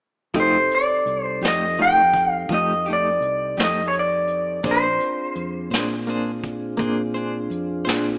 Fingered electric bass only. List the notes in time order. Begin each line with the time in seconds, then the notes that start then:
0.34 F1
1.06 C2
1.41 F2
2.49 F2
3.20 C2
3.57 F2
4.64 A#1
5.35 F2
5.70 A#2
6.80 A#2
7.50 F2
7.86 A#2